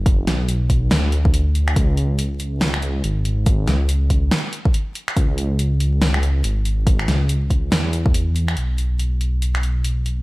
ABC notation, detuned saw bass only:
X:1
M:4/4
L:1/8
Q:"Swing 16ths" 1/4=141
K:C#phr
V:1 name="Detuned saw bass" clef=bass
F,,, B,,,3 D,,4 | C,,6 G,,,2- | G,,, C,,3 z4 | C,,6 G,,,2- |
G,,, C,,3 E,,4 | B,,,8 |]